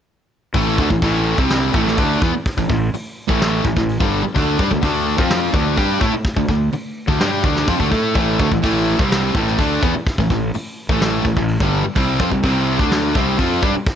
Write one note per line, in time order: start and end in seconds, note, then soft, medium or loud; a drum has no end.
0.54 0.77 A1 medium
0.54 0.78 A2 loud
0.54 0.78 E3 medium
0.54 0.78 A3 loud
0.54 kick loud
0.54 open hi-hat medium
0.78 0.89 D2 medium
0.78 0.90 D3 medium
0.78 0.90 A3 medium
0.78 kick loud
0.90 1.01 A1 medium
0.90 1.01 A2 medium
0.90 1.02 E3 medium
0.90 kick medium
1.02 1.35 A1 loud
1.02 1.37 A2 medium
1.02 1.38 E3 medium
1.02 1.38 A3 loud
1.02 kick loud
1.02 open hi-hat medium
1.38 1.71 C2 medium
1.38 1.73 C3 medium
1.38 1.73 G3 medium
1.38 1.73 C4 medium
1.38 kick loud
1.50 snare loud
1.50 open hi-hat medium
1.73 1.96 A1 loud
1.73 1.97 A2 medium
1.73 1.97 E3 medium
1.73 1.97 A3 loud
1.73 kick loud
1.88 snare soft
1.98 2.20 D2 medium
1.98 2.21 D3 medium
1.98 2.21 A3 medium
1.98 2.21 D4 loud
1.98 kick loud
1.98 open hi-hat medium
2.22 2.32 E2 medium
2.22 2.33 E3 loud
2.22 2.33 B3 loud
2.22 kick loud
2.33 muted fingered electric bass stroke soft
2.33 muted distorted electric guitar stroke medium
2.46 kick loud
2.46 open hi-hat medium
2.57 2.68 A1 medium
2.57 2.68 A2 medium
2.57 2.68 E3 medium
2.57 kick medium
2.69 2.91 A1 medium
2.69 2.88 A2 medium
2.69 2.88 E3 medium
2.69 kick medium
2.93 muted fingered electric bass stroke soft
2.93 muted distorted electric guitar stroke medium
2.93 open hi-hat medium
3.29 3.62 A1 loud
3.29 3.63 A2 medium
3.29 3.64 E3 medium
3.29 3.65 A3 medium
3.29 kick loud
3.41 snare loud
3.41 open hi-hat medium
3.65 3.76 A1 medium
3.65 3.76 A2 medium
3.65 3.77 E3 medium
3.65 kick medium
3.76 3.98 A1 medium
3.76 3.96 A2 medium
3.76 3.96 E3 medium
3.76 kick medium
3.76 snare soft
3.89 open hi-hat medium
4.00 4.22 G1 medium
4.00 4.23 G2 medium
4.00 4.23 D3 medium
4.00 4.24 G3 loud
4.00 kick loud
4.23 muted fingered electric bass stroke soft
4.23 muted distorted electric guitar stroke medium
4.34 4.58 D2 medium
4.34 4.58 D3 medium
4.34 4.58 A3 loud
4.34 4.58 D4 loud
4.34 kick medium
4.34 open hi-hat medium
4.59 4.70 G2 medium
4.59 4.70 G3 medium
4.59 4.71 D4 medium
4.59 kick loud
4.71 4.82 D2 medium
4.71 4.80 D3 medium
4.71 4.82 A3 medium
4.71 kick medium
4.82 5.16 D2 loud
4.82 5.17 D3 medium
4.82 5.18 A3 loud
4.82 5.18 D4 medium
4.82 kick medium
4.82 open hi-hat medium
5.17 5.52 F2 loud
5.17 5.52 F3 medium
5.17 5.53 C4 medium
5.17 5.53 F4 loud
5.17 kick loud
5.30 snare loud
5.30 open hi-hat medium
5.53 5.76 D2 loud
5.53 5.77 D3 loud
5.53 5.76 A3 loud
5.53 5.76 D4 loud
5.53 kick loud
5.76 6.00 G2 medium
5.76 6.00 G3 medium
5.76 6.01 D4 medium
5.76 6.01 G4 medium
5.76 kick loud
5.76 open hi-hat medium
6.00 6.13 A2 loud
6.00 6.12 A3 loud
6.00 6.13 E4 loud
6.00 kick loud
6.13 muted distorted electric guitar stroke medium
6.13 muted fingered electric bass stroke soft
6.24 kick loud
6.24 open hi-hat medium
6.37 6.47 D2 medium
6.37 6.48 D3 medium
6.37 6.48 A3 medium
6.37 kick medium
6.48 6.71 D2 medium
6.48 6.68 D3 medium
6.48 6.68 A3 medium
6.48 kick medium
6.72 muted distorted electric guitar stroke medium
6.72 muted fingered electric bass stroke soft
6.72 open hi-hat medium
7.08 7.19 D2 medium
7.08 7.19 D3 medium
7.08 7.19 A3 medium
7.08 kick loud
7.19 7.43 G2 medium
7.19 7.43 G3 medium
7.19 7.43 D4 loud
7.19 7.44 G4 loud
7.19 snare loud
7.19 open hi-hat medium
7.44 7.66 D2 loud
7.44 7.67 D3 loud
7.44 7.68 A3 medium
7.44 7.68 D4 loud
7.44 kick loud
7.56 snare soft
7.68 7.79 F2 medium
7.68 7.79 F3 medium
7.68 7.79 C4 loud
7.68 kick loud
7.68 open hi-hat medium
7.79 7.90 D2 medium
7.79 7.91 D3 medium
7.79 7.90 A3 medium
7.79 kick medium
7.91 8.14 A2 medium
7.91 8.15 A3 medium
7.91 8.15 E4 loud
7.91 8.15 A4 medium
7.91 kick medium
8.15 8.38 A1 medium
8.15 8.39 A2 loud
8.15 8.39 E3 loud
8.15 8.39 A3 medium
8.15 kick loud
8.15 open hi-hat medium
8.39 8.51 D2 medium
8.39 8.51 D3 medium
8.39 8.51 A3 medium
8.39 kick loud
8.52 8.63 A1 medium
8.52 8.63 A2 medium
8.52 8.63 E3 medium
8.52 kick medium
8.63 8.96 A1 loud
8.63 8.99 A2 medium
8.63 8.99 E3 loud
8.63 8.99 A3 loud
8.63 kick loud
8.63 open hi-hat medium
8.99 9.32 C2 medium
8.99 9.34 C3 medium
8.99 9.35 G3 medium
8.99 9.35 C4 loud
8.99 kick loud
9.11 snare loud
9.11 open hi-hat medium
9.35 9.57 A1 loud
9.35 9.58 A2 medium
9.35 9.58 E3 medium
9.35 9.58 A3 loud
9.35 kick loud
9.48 snare soft
9.58 9.80 D2 medium
9.58 9.82 D3 medium
9.58 9.82 A3 medium
9.58 9.82 D4 medium
9.58 kick medium
9.58 open hi-hat medium
9.82 9.93 E2 loud
9.82 9.93 E3 loud
9.82 9.94 B3 loud
9.82 kick loud
9.95 muted fingered electric bass stroke soft
9.95 muted distorted electric guitar stroke medium
10.07 kick loud
10.07 open hi-hat medium
10.18 10.29 A1 medium
10.18 10.30 A2 medium
10.18 10.30 E3 medium
10.18 kick medium
10.30 10.52 A1 medium
10.30 10.49 A2 medium
10.30 10.49 E3 medium
10.30 kick medium
10.54 muted fingered electric bass stroke soft
10.54 muted distorted electric guitar stroke medium
10.54 open hi-hat medium
10.89 11.22 A1 loud
10.89 11.24 A2 medium
10.89 11.25 E3 loud
10.89 11.25 A3 loud
10.89 kick loud
11.01 snare loud
11.01 open hi-hat medium
11.25 11.36 A1 medium
11.25 11.36 A2 medium
11.25 11.37 E3 medium
11.25 kick medium
11.36 11.58 A1 medium
11.36 11.56 A2 medium
11.36 11.56 E3 medium
11.36 kick medium
11.48 open hi-hat medium
11.60 11.82 G1 medium
11.60 11.83 G2 medium
11.60 11.84 D3 medium
11.60 11.84 G3 loud
11.60 kick loud
11.84 muted fingered electric bass stroke soft
11.84 muted distorted electric guitar stroke medium
11.96 12.18 C2 medium
11.96 12.19 C3 loud
11.96 12.20 G3 loud
11.96 12.19 C4 loud
11.96 kick loud
11.96 open hi-hat medium
12.19 12.30 F2 medium
12.19 12.31 F3 medium
12.19 12.31 C4 loud
12.19 kick loud
12.31 12.43 C2 medium
12.31 12.42 C3 medium
12.31 12.43 G3 medium
12.31 kick medium
12.44 12.77 C2 loud
12.44 12.79 C3 loud
12.44 12.79 G3 medium
12.44 12.79 C4 loud
12.44 kick loud
12.44 open hi-hat medium
12.79 13.12 D2 loud
12.79 13.14 D3 medium
12.79 13.14 A3 medium
12.79 13.15 D4 medium
12.79 kick loud
12.91 snare loud
12.91 open hi-hat medium
13.15 13.37 C2 loud
13.15 13.38 C3 medium
13.15 13.39 G3 medium
13.15 13.38 C4 loud
13.15 kick loud
13.39 13.61 F2 medium
13.39 13.62 F3 medium
13.39 13.62 C4 medium
13.39 13.62 F4 loud
13.39 kick medium
13.39 open hi-hat medium
13.63 13.74 G2 medium
13.63 13.74 G3 loud
13.63 13.74 D4 loud
13.63 kick loud
13.75 muted distorted electric guitar stroke medium
13.75 muted fingered electric bass stroke soft
13.87 kick loud
13.87 open hi-hat medium